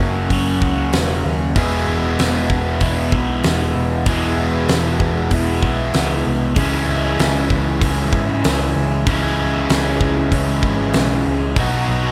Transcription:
Already playing: F#2 C#3 F#3 A#3 C#4 F#4 A#4 F#5
0.00 F#1
0.30 F#1 F#2 C#3 F#3 A#3 C#4 F#4, kick, open hi-hat
0.62 C#2, kick
0.93 E1, snare, open hi-hat
1.25 D#2
1.55 E1 E2 B2 E3 G#3 B3 E4 G#4 E5, kick, open hi-hat
1.88 E1
2.19 E1, snare, open hi-hat
2.50 E1, kick
2.80 E1 E2 B2 E3 G#3 B3, kick, open hi-hat
2.84 E4
3.12 B1, kick
3.43 E1, snare, open hi-hat
3.76 E1
4.05 E1 E2 B2 E3 G#3 B3 E4 G#4 E5, kick, open hi-hat
4.10 G#4
4.68 E1, snare, open hi-hat
5.00 E1, kick
5.30 E1 E2 B2 E3 G#3 B3 E4, kick, open hi-hat
5.62 B1, kick
5.94 C#2, snare, open hi-hat
6.26 C2
6.55 C#2 C#3 E3 G#3 C#4 E4 G#4 E5, kick, open hi-hat
6.88 C#2
7.19 C#2, snare, open hi-hat
7.50 C#2, kick
7.81 C#2 C#3 E3 G#3 C#4 E4, kick, open hi-hat
8.13 G#2, kick
8.44 C#2, snare, open hi-hat
8.76 C#2
9.07 C#2 C#3 E3 G#3 C#4 E4 G#4, kick, open hi-hat
9.69 C#2, snare, open hi-hat
10.01 C#2, kick
10.32 C#2 C#3 E3 G#3 C#4 E4, kick, open hi-hat
10.63 G#1, kick
10.93 B1, snare, open hi-hat
11.27 C#2
11.56 B1 B2 F#3 B3 D#4 F#4 D#5, kick, open hi-hat
11.60 F#4
11.88 B1

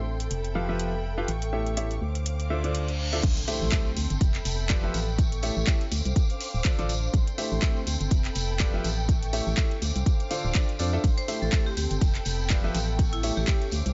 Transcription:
Already playing: A1 C4 A4 G5 C6
0.20 closed hi-hat
0.31 F1 B3 E5 B5, closed hi-hat
0.44 closed hi-hat
0.52 F3 F4 G4 A4 B4 E5 F5
0.69 F3 F4 G4 A4 B4 E5
0.79 closed hi-hat
1.18 F4 G4 A4 B4 F5
1.28 A1 C#4 C#6, closed hi-hat
1.42 closed hi-hat
1.53 A3 E4 G4 A4 C#5 E5
1.66 closed hi-hat
1.77 E4 G4 A4 C#5 E5, closed hi-hat
1.91 closed hi-hat
2.01 D2 D4 C5 F5 D6
2.15 C5, closed hi-hat
2.26 closed hi-hat, reverse cymbal
2.37 F5, closed hi-hat
2.50 D3 D4 F4 A4 C5 E5
2.64 D3 D4 F4 A4 C5 D5, closed hi-hat
2.75 closed hi-hat
2.88 closed hi-hat
3.13 D4 F4 A4 C5 E5, closed hi-hat
3.23 A1 C4 A4 G5 C6, kick, closed hi-hat, tambourine, crash, impact
3.37 closed hi-hat, tambourine
3.45 A3 E4 G4 A4 C5 E5, open hi-hat, tambourine
3.61 A1 G5, tambourine
3.72 A3 E4 G4 A4 C5 E5, kick, clap, closed hi-hat
3.86 tambourine
3.97 D2, open hi-hat, tambourine
4.10 G1, closed hi-hat, tambourine
4.21 F1 B3 E5 B5, kick, closed hi-hat, tambourine
4.34 clap, closed hi-hat, tambourine
4.45 F1, open hi-hat, tambourine
4.59 E5, tambourine
4.69 F3 F4 G4 A4 B4 D5, kick, clap, closed hi-hat
4.83 F3 F4 G4 A4 B4 E5, tambourine
4.94 A1, open hi-hat, tambourine
5.08 tambourine
5.18 C#4 C#6, kick, closed hi-hat, tambourine
5.32 closed hi-hat, tambourine
5.43 A3 E4 G4 A4 C#5 E5, open hi-hat, tambourine
5.57 A1, tambourine
5.67 E4 G4 A4 C#5 E5, kick, clap, closed hi-hat
5.81 closed hi-hat, tambourine
5.92 D2 D4 C5 F5 D6, open hi-hat, tambourine
6.05 C2, closed hi-hat, tambourine
6.14 C5 F5, kick, closed hi-hat, tambourine
6.30 closed hi-hat, tambourine
6.40 open hi-hat, tambourine
6.54 D1, tambourine
6.65 D3 D4 F4 A4 C5 D5, kick, clap, closed hi-hat, tambourine
6.78 A1 D3 D4 F4 A4 C5 D5, closed hi-hat, tambourine
6.89 open hi-hat, tambourine
7.03 tambourine
7.13 A1 C4 A4 G5 C6, kick, closed hi-hat, tambourine
7.27 closed hi-hat, tambourine
7.38 A3 E4 G4 A4 C5 E5, open hi-hat, tambourine
7.44 A4 G5
7.52 A1, tambourine
7.62 A3 E4 G4 A4 C5 E5, kick, clap, closed hi-hat
7.77 tambourine
7.87 D2, open hi-hat, tambourine
8.01 G1, closed hi-hat, tambourine
8.11 F1 B3 E5 B5, kick, closed hi-hat, tambourine
8.25 clap, closed hi-hat, tambourine
8.35 F1, open hi-hat, tambourine
8.49 tambourine
8.56 E5
8.60 F3 F4 G4 A4 B4 D5, kick, clap, closed hi-hat, tambourine
8.74 F3 F4 G4 A4 B4 E5, tambourine
8.84 A1, open hi-hat, tambourine
8.99 tambourine
9.09 C#4 C#6, kick, closed hi-hat, tambourine
9.23 closed hi-hat, tambourine
9.33 A3 E4 G4 A4 C#5 E5, open hi-hat, tambourine
9.47 A1, tambourine
9.57 E4 G4 A4 C#5 E5, kick, clap, closed hi-hat
9.71 closed hi-hat, tambourine
9.82 D2 D4 C5 F5 D6, open hi-hat, tambourine
9.95 C2, closed hi-hat, tambourine
10.06 kick, closed hi-hat, tambourine
10.20 closed hi-hat, tambourine
10.26 C5
10.31 D3 D4 F4 A4 C5 F5, open hi-hat, tambourine
10.44 D1, tambourine
10.55 D3 D4 F4 A4 C5 D5, kick, clap, closed hi-hat
10.69 closed hi-hat, tambourine
10.79 F2 D4 F4 A4 C5 D5, open hi-hat, tambourine
10.93 D4 F4 A4 C5 E5, tambourine
11.04 A1 C4 A4 G5 C6, kick, closed hi-hat, ride, tambourine
11.18 C5, closed hi-hat, tambourine
11.28 A3 E4 G4 A4 C5 E5, open hi-hat, tambourine
11.40 A1 A4, tambourine
11.48 G5
11.52 A3 E4 G4 A4 C5 E5, kick, clap, closed hi-hat, ride
11.66 G4, tambourine
11.77 D2 G4, open hi-hat, tambourine
11.90 G1, closed hi-hat, tambourine
12.01 F1 B3 E5 B5, kick, closed hi-hat, ride, tambourine
12.15 clap, closed hi-hat, tambourine
12.25 F1, open hi-hat, tambourine
12.38 E5, tambourine
12.50 F3 F4 G4 A4 B4 D5, kick, clap, closed hi-hat, ride
12.64 F3 F4 G4 A4 B4 E5, tambourine
12.75 A1, open hi-hat, tambourine
12.88 tambourine
12.99 C#4 C#6, kick, closed hi-hat, ride, tambourine
13.13 E4, closed hi-hat, tambourine
13.23 A3 E4 G4 A4 C#5 E5, open hi-hat, tambourine
13.37 A1 G4, tambourine
13.48 E4 G4 A4 C#5 E5, kick, clap, closed hi-hat, ride, tambourine
13.61 closed hi-hat, tambourine
13.71 D2 D4 C5 F5 D6, open hi-hat, tambourine
13.86 C2, closed hi-hat, tambourine

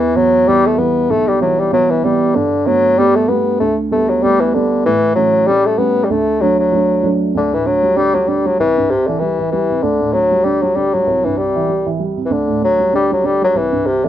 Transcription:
Already playing: E2 E3
0.15 E3 F#3 B3
0.46 E3 G3 B3
0.66 A3
0.78 E3 G3 B3
1.09 B1 A3
1.28 G3
1.40 E3 F#3 G3 B3
1.60 G3
1.71 E3 F#3 G3 B3
1.90 E3
2.03 E3 G3 B3
2.35 G2 D3
2.66 D3 F#3 A3 B3
2.97 G3 A3 B3
3.16 A3
3.28 G3 A3 B3
3.60 D2 A3
3.91 G3 A3 B3
4.09 F#3
4.22 G3 A3 B3
4.40 E3
4.54 D3 G3 A3 B3
4.85 A2 E3
5.15 E3 F#3 A3 C#4
5.47 G3 A3 C#4
5.66 A3
5.78 G3 A3 B3 C#4
6.04 G3
6.10 D2 A3
6.41 F#3 A3 D4
6.59 F#3
6.72 F#3 A3 D4
7.03 F#3 A3 D4
7.35 D2 D3
7.52 A2 E3
7.66 D3 F#3
7.83 G3
7.96 D3 G3
8.14 F#3 G3
8.28 D3 G3
8.45 F#3 G3
8.59 C2 E3
8.77 G2
8.90 C3
9.07 D3 E3
9.19 E3 G3
9.39 E3
9.52 E3 G3
9.70 C3
9.82 D2 D3
10.00 A2
10.13 D3 F#3
10.31 G3
10.44 D3 G3
10.62 F#3 G3
10.76 D3 G3
10.94 F#3 G3
11.07 C2
11.24 G2 E3
11.37 C3 G3
11.56 E3
11.69 G3
11.86 E3
11.99 G3
12.17 C3
12.26 E3
12.30 D2 D3
12.47 A2
12.61 D3 F#3
12.79 G3
12.93 D3 G3
13.11 F#3 G3
13.23 D3 G3
13.42 F#3 G3
13.54 C2 E3
13.72 G2
13.86 C3
14.04 D3 E3

